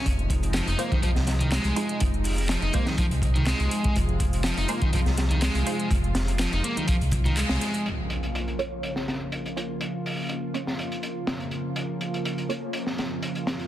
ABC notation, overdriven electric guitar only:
X:1
M:4/4
L:1/16
Q:"Swing 16ths" 1/4=123
K:Bbm
V:1 name="Overdriven electric guitar" clef=bass
z4 F, E B, E, F, z2 E, A,4 | z4 F, E B, E, F, z2 E, A,4 | z4 F, E B, E, F, z2 E, A,4 | z4 F, E B, E, F, z2 E, A,4 |
z16 | z16 | z16 |]